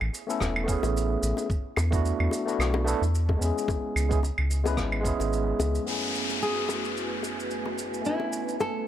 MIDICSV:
0, 0, Header, 1, 7, 480
1, 0, Start_track
1, 0, Key_signature, 3, "minor"
1, 0, Tempo, 545455
1, 1322, Time_signature, 4, 2, 24, 8
1, 7811, End_track
2, 0, Start_track
2, 0, Title_t, "Nylon-string guitar"
2, 0, Program_c, 0, 24
2, 5655, Note_on_c, 0, 68, 89
2, 6573, Note_off_c, 0, 68, 0
2, 7094, Note_on_c, 0, 64, 85
2, 7535, Note_off_c, 0, 64, 0
2, 7574, Note_on_c, 0, 69, 91
2, 7811, Note_off_c, 0, 69, 0
2, 7811, End_track
3, 0, Start_track
3, 0, Title_t, "Analog synth pad"
3, 0, Program_c, 1, 89
3, 5164, Note_on_c, 1, 64, 68
3, 5166, Note_on_c, 1, 57, 66
3, 5166, Note_on_c, 1, 66, 63
3, 5166, Note_on_c, 1, 71, 74
3, 5166, Note_on_c, 1, 80, 66
3, 7064, Note_off_c, 1, 64, 0
3, 7065, Note_off_c, 1, 66, 0
3, 7082, Note_on_c, 1, 61, 65
3, 7811, Note_off_c, 1, 57, 0
3, 7811, Note_off_c, 1, 61, 0
3, 7811, Note_off_c, 1, 71, 0
3, 7811, Note_off_c, 1, 80, 0
3, 7811, End_track
4, 0, Start_track
4, 0, Title_t, "Tine electric piano"
4, 0, Program_c, 2, 4
4, 235, Note_on_c, 2, 57, 80
4, 245, Note_on_c, 2, 59, 76
4, 253, Note_on_c, 2, 61, 81
4, 261, Note_on_c, 2, 64, 82
4, 270, Note_on_c, 2, 69, 92
4, 552, Note_off_c, 2, 57, 0
4, 563, Note_on_c, 2, 57, 92
4, 571, Note_off_c, 2, 59, 0
4, 575, Note_off_c, 2, 61, 0
4, 579, Note_off_c, 2, 64, 0
4, 581, Note_on_c, 2, 59, 83
4, 583, Note_off_c, 2, 69, 0
4, 597, Note_on_c, 2, 61, 84
4, 617, Note_on_c, 2, 64, 84
4, 633, Note_on_c, 2, 68, 103
4, 1289, Note_off_c, 2, 57, 0
4, 1299, Note_off_c, 2, 59, 0
4, 1307, Note_off_c, 2, 61, 0
4, 1316, Note_off_c, 2, 64, 0
4, 1325, Note_off_c, 2, 68, 0
4, 1678, Note_on_c, 2, 57, 91
4, 1686, Note_on_c, 2, 59, 81
4, 1694, Note_on_c, 2, 62, 88
4, 1702, Note_on_c, 2, 64, 83
4, 1712, Note_on_c, 2, 66, 104
4, 2135, Note_off_c, 2, 57, 0
4, 2139, Note_off_c, 2, 59, 0
4, 2143, Note_off_c, 2, 62, 0
4, 2147, Note_off_c, 2, 64, 0
4, 2152, Note_off_c, 2, 66, 0
4, 2158, Note_on_c, 2, 57, 89
4, 2166, Note_on_c, 2, 59, 76
4, 2176, Note_on_c, 2, 62, 78
4, 2185, Note_on_c, 2, 64, 78
4, 2192, Note_on_c, 2, 66, 92
4, 2487, Note_off_c, 2, 57, 0
4, 2492, Note_off_c, 2, 59, 0
4, 2496, Note_off_c, 2, 62, 0
4, 2501, Note_off_c, 2, 64, 0
4, 2504, Note_off_c, 2, 66, 0
4, 2505, Note_on_c, 2, 57, 102
4, 2514, Note_on_c, 2, 59, 94
4, 2522, Note_on_c, 2, 62, 84
4, 2532, Note_on_c, 2, 64, 92
4, 2539, Note_on_c, 2, 69, 105
4, 2650, Note_off_c, 2, 57, 0
4, 2654, Note_off_c, 2, 59, 0
4, 2658, Note_off_c, 2, 62, 0
4, 2663, Note_off_c, 2, 64, 0
4, 2667, Note_off_c, 2, 69, 0
4, 2965, Note_on_c, 2, 56, 79
4, 2983, Note_on_c, 2, 59, 77
4, 3001, Note_on_c, 2, 61, 77
4, 3019, Note_on_c, 2, 64, 71
4, 3036, Note_on_c, 2, 68, 86
4, 3565, Note_off_c, 2, 56, 0
4, 3574, Note_off_c, 2, 59, 0
4, 3583, Note_off_c, 2, 61, 0
4, 3592, Note_off_c, 2, 64, 0
4, 3598, Note_on_c, 2, 56, 83
4, 3601, Note_off_c, 2, 68, 0
4, 3607, Note_on_c, 2, 59, 81
4, 3616, Note_on_c, 2, 61, 74
4, 3626, Note_on_c, 2, 64, 76
4, 3634, Note_on_c, 2, 68, 96
4, 3674, Note_off_c, 2, 56, 0
4, 3679, Note_off_c, 2, 59, 0
4, 3683, Note_off_c, 2, 61, 0
4, 3688, Note_off_c, 2, 64, 0
4, 3692, Note_off_c, 2, 68, 0
4, 4078, Note_on_c, 2, 56, 83
4, 4088, Note_on_c, 2, 59, 78
4, 4097, Note_on_c, 2, 61, 78
4, 4105, Note_on_c, 2, 64, 81
4, 4114, Note_on_c, 2, 71, 95
4, 4396, Note_off_c, 2, 56, 0
4, 4407, Note_on_c, 2, 56, 92
4, 4412, Note_off_c, 2, 59, 0
4, 4417, Note_off_c, 2, 61, 0
4, 4421, Note_off_c, 2, 64, 0
4, 4424, Note_on_c, 2, 59, 87
4, 4425, Note_off_c, 2, 71, 0
4, 4442, Note_on_c, 2, 61, 88
4, 4458, Note_on_c, 2, 64, 87
4, 4475, Note_on_c, 2, 68, 100
4, 5127, Note_on_c, 2, 42, 64
4, 5131, Note_off_c, 2, 56, 0
4, 5140, Note_off_c, 2, 59, 0
4, 5142, Note_on_c, 2, 57, 56
4, 5149, Note_off_c, 2, 61, 0
4, 5156, Note_on_c, 2, 59, 54
4, 5157, Note_off_c, 2, 64, 0
4, 5166, Note_off_c, 2, 68, 0
4, 5169, Note_on_c, 2, 61, 58
4, 5182, Note_on_c, 2, 64, 57
4, 5197, Note_on_c, 2, 68, 67
4, 7039, Note_off_c, 2, 42, 0
4, 7039, Note_off_c, 2, 57, 0
4, 7050, Note_on_c, 2, 57, 61
4, 7053, Note_off_c, 2, 59, 0
4, 7060, Note_off_c, 2, 61, 0
4, 7066, Note_off_c, 2, 64, 0
4, 7067, Note_on_c, 2, 59, 56
4, 7074, Note_off_c, 2, 68, 0
4, 7084, Note_on_c, 2, 61, 59
4, 7101, Note_on_c, 2, 64, 58
4, 7119, Note_on_c, 2, 80, 67
4, 7811, Note_off_c, 2, 57, 0
4, 7811, Note_off_c, 2, 59, 0
4, 7811, Note_off_c, 2, 61, 0
4, 7811, Note_off_c, 2, 64, 0
4, 7811, Note_off_c, 2, 80, 0
4, 7811, End_track
5, 0, Start_track
5, 0, Title_t, "Analog synth bass"
5, 0, Program_c, 3, 38
5, 9, Note_on_c, 3, 33, 89
5, 87, Note_off_c, 3, 33, 0
5, 358, Note_on_c, 3, 28, 84
5, 670, Note_off_c, 3, 28, 0
5, 730, Note_on_c, 3, 33, 94
5, 1029, Note_off_c, 3, 33, 0
5, 1079, Note_on_c, 3, 33, 91
5, 1175, Note_off_c, 3, 33, 0
5, 1557, Note_on_c, 3, 40, 98
5, 1870, Note_off_c, 3, 40, 0
5, 1934, Note_on_c, 3, 40, 95
5, 2009, Note_off_c, 3, 40, 0
5, 2277, Note_on_c, 3, 35, 89
5, 2590, Note_off_c, 3, 35, 0
5, 2653, Note_on_c, 3, 40, 95
5, 2950, Note_off_c, 3, 40, 0
5, 3000, Note_on_c, 3, 40, 84
5, 3095, Note_off_c, 3, 40, 0
5, 3481, Note_on_c, 3, 37, 97
5, 3792, Note_off_c, 3, 37, 0
5, 3856, Note_on_c, 3, 37, 96
5, 4201, Note_on_c, 3, 32, 89
5, 4215, Note_off_c, 3, 37, 0
5, 4512, Note_off_c, 3, 32, 0
5, 4576, Note_on_c, 3, 32, 91
5, 4871, Note_off_c, 3, 32, 0
5, 4921, Note_on_c, 3, 37, 95
5, 5099, Note_off_c, 3, 37, 0
5, 7811, End_track
6, 0, Start_track
6, 0, Title_t, "Downlifter"
6, 0, Program_c, 4, 103
6, 5161, Note_on_c, 4, 60, 55
6, 7811, Note_off_c, 4, 60, 0
6, 7811, End_track
7, 0, Start_track
7, 0, Title_t, "Drums"
7, 10, Note_on_c, 9, 75, 56
7, 98, Note_off_c, 9, 75, 0
7, 126, Note_on_c, 9, 82, 83
7, 214, Note_off_c, 9, 82, 0
7, 263, Note_on_c, 9, 82, 61
7, 351, Note_off_c, 9, 82, 0
7, 356, Note_on_c, 9, 37, 65
7, 357, Note_on_c, 9, 36, 59
7, 361, Note_on_c, 9, 60, 45
7, 368, Note_on_c, 9, 82, 47
7, 444, Note_off_c, 9, 37, 0
7, 445, Note_off_c, 9, 36, 0
7, 449, Note_off_c, 9, 60, 0
7, 456, Note_off_c, 9, 82, 0
7, 494, Note_on_c, 9, 75, 72
7, 582, Note_off_c, 9, 75, 0
7, 597, Note_on_c, 9, 36, 92
7, 605, Note_on_c, 9, 82, 88
7, 685, Note_off_c, 9, 36, 0
7, 693, Note_off_c, 9, 82, 0
7, 731, Note_on_c, 9, 60, 63
7, 740, Note_on_c, 9, 82, 50
7, 819, Note_off_c, 9, 60, 0
7, 828, Note_off_c, 9, 82, 0
7, 852, Note_on_c, 9, 82, 54
7, 940, Note_off_c, 9, 82, 0
7, 1082, Note_on_c, 9, 82, 91
7, 1170, Note_off_c, 9, 82, 0
7, 1205, Note_on_c, 9, 60, 49
7, 1215, Note_on_c, 9, 82, 57
7, 1293, Note_off_c, 9, 60, 0
7, 1303, Note_off_c, 9, 82, 0
7, 1318, Note_on_c, 9, 36, 117
7, 1325, Note_on_c, 9, 82, 45
7, 1406, Note_off_c, 9, 36, 0
7, 1413, Note_off_c, 9, 82, 0
7, 1553, Note_on_c, 9, 75, 59
7, 1558, Note_on_c, 9, 60, 74
7, 1568, Note_on_c, 9, 82, 74
7, 1641, Note_off_c, 9, 75, 0
7, 1646, Note_off_c, 9, 60, 0
7, 1656, Note_off_c, 9, 82, 0
7, 1692, Note_on_c, 9, 36, 101
7, 1699, Note_on_c, 9, 82, 53
7, 1780, Note_off_c, 9, 36, 0
7, 1787, Note_off_c, 9, 82, 0
7, 1807, Note_on_c, 9, 82, 46
7, 1895, Note_off_c, 9, 82, 0
7, 1937, Note_on_c, 9, 75, 57
7, 2025, Note_off_c, 9, 75, 0
7, 2035, Note_on_c, 9, 60, 52
7, 2050, Note_on_c, 9, 82, 82
7, 2123, Note_off_c, 9, 60, 0
7, 2138, Note_off_c, 9, 82, 0
7, 2185, Note_on_c, 9, 82, 57
7, 2273, Note_off_c, 9, 82, 0
7, 2287, Note_on_c, 9, 75, 60
7, 2290, Note_on_c, 9, 37, 75
7, 2297, Note_on_c, 9, 82, 44
7, 2375, Note_off_c, 9, 75, 0
7, 2378, Note_off_c, 9, 37, 0
7, 2385, Note_off_c, 9, 82, 0
7, 2410, Note_on_c, 9, 60, 80
7, 2498, Note_off_c, 9, 60, 0
7, 2529, Note_on_c, 9, 82, 85
7, 2617, Note_off_c, 9, 82, 0
7, 2666, Note_on_c, 9, 82, 53
7, 2754, Note_off_c, 9, 82, 0
7, 2771, Note_on_c, 9, 82, 54
7, 2859, Note_off_c, 9, 82, 0
7, 2894, Note_on_c, 9, 36, 93
7, 2899, Note_on_c, 9, 60, 47
7, 2982, Note_off_c, 9, 36, 0
7, 2987, Note_off_c, 9, 60, 0
7, 3008, Note_on_c, 9, 82, 88
7, 3096, Note_off_c, 9, 82, 0
7, 3152, Note_on_c, 9, 82, 57
7, 3240, Note_off_c, 9, 82, 0
7, 3240, Note_on_c, 9, 36, 120
7, 3243, Note_on_c, 9, 60, 74
7, 3253, Note_on_c, 9, 82, 49
7, 3328, Note_off_c, 9, 36, 0
7, 3331, Note_off_c, 9, 60, 0
7, 3341, Note_off_c, 9, 82, 0
7, 3486, Note_on_c, 9, 75, 62
7, 3494, Note_on_c, 9, 82, 76
7, 3574, Note_off_c, 9, 75, 0
7, 3582, Note_off_c, 9, 82, 0
7, 3615, Note_on_c, 9, 36, 101
7, 3621, Note_on_c, 9, 82, 54
7, 3703, Note_off_c, 9, 36, 0
7, 3709, Note_off_c, 9, 82, 0
7, 3723, Note_on_c, 9, 60, 46
7, 3734, Note_on_c, 9, 82, 53
7, 3811, Note_off_c, 9, 60, 0
7, 3822, Note_off_c, 9, 82, 0
7, 3853, Note_on_c, 9, 75, 67
7, 3941, Note_off_c, 9, 75, 0
7, 3966, Note_on_c, 9, 82, 77
7, 4054, Note_off_c, 9, 82, 0
7, 4097, Note_on_c, 9, 60, 79
7, 4102, Note_on_c, 9, 82, 65
7, 4185, Note_off_c, 9, 60, 0
7, 4190, Note_off_c, 9, 82, 0
7, 4199, Note_on_c, 9, 37, 81
7, 4201, Note_on_c, 9, 36, 56
7, 4204, Note_on_c, 9, 82, 49
7, 4287, Note_off_c, 9, 37, 0
7, 4289, Note_off_c, 9, 36, 0
7, 4292, Note_off_c, 9, 82, 0
7, 4333, Note_on_c, 9, 75, 71
7, 4421, Note_off_c, 9, 75, 0
7, 4440, Note_on_c, 9, 36, 90
7, 4447, Note_on_c, 9, 82, 90
7, 4528, Note_off_c, 9, 36, 0
7, 4535, Note_off_c, 9, 82, 0
7, 4575, Note_on_c, 9, 60, 48
7, 4582, Note_on_c, 9, 82, 55
7, 4663, Note_off_c, 9, 60, 0
7, 4670, Note_off_c, 9, 82, 0
7, 4691, Note_on_c, 9, 82, 55
7, 4779, Note_off_c, 9, 82, 0
7, 4925, Note_on_c, 9, 60, 72
7, 4928, Note_on_c, 9, 82, 85
7, 5013, Note_off_c, 9, 60, 0
7, 5016, Note_off_c, 9, 82, 0
7, 5060, Note_on_c, 9, 82, 55
7, 5148, Note_off_c, 9, 82, 0
7, 5169, Note_on_c, 9, 82, 40
7, 5257, Note_off_c, 9, 82, 0
7, 5410, Note_on_c, 9, 82, 64
7, 5498, Note_off_c, 9, 82, 0
7, 5539, Note_on_c, 9, 60, 33
7, 5541, Note_on_c, 9, 82, 49
7, 5627, Note_off_c, 9, 60, 0
7, 5629, Note_off_c, 9, 82, 0
7, 5658, Note_on_c, 9, 82, 41
7, 5746, Note_off_c, 9, 82, 0
7, 5885, Note_on_c, 9, 60, 68
7, 5894, Note_on_c, 9, 82, 69
7, 5973, Note_off_c, 9, 60, 0
7, 5982, Note_off_c, 9, 82, 0
7, 6024, Note_on_c, 9, 82, 45
7, 6112, Note_off_c, 9, 82, 0
7, 6134, Note_on_c, 9, 82, 39
7, 6222, Note_off_c, 9, 82, 0
7, 6360, Note_on_c, 9, 60, 43
7, 6371, Note_on_c, 9, 82, 82
7, 6448, Note_off_c, 9, 60, 0
7, 6459, Note_off_c, 9, 82, 0
7, 6510, Note_on_c, 9, 82, 44
7, 6598, Note_off_c, 9, 82, 0
7, 6605, Note_on_c, 9, 82, 39
7, 6693, Note_off_c, 9, 82, 0
7, 6737, Note_on_c, 9, 60, 59
7, 6825, Note_off_c, 9, 60, 0
7, 6847, Note_on_c, 9, 82, 71
7, 6935, Note_off_c, 9, 82, 0
7, 6986, Note_on_c, 9, 82, 50
7, 7074, Note_off_c, 9, 82, 0
7, 7083, Note_on_c, 9, 82, 46
7, 7171, Note_off_c, 9, 82, 0
7, 7213, Note_on_c, 9, 60, 51
7, 7301, Note_off_c, 9, 60, 0
7, 7327, Note_on_c, 9, 82, 75
7, 7415, Note_off_c, 9, 82, 0
7, 7467, Note_on_c, 9, 82, 47
7, 7555, Note_off_c, 9, 82, 0
7, 7568, Note_on_c, 9, 82, 46
7, 7572, Note_on_c, 9, 60, 74
7, 7656, Note_off_c, 9, 82, 0
7, 7660, Note_off_c, 9, 60, 0
7, 7811, End_track
0, 0, End_of_file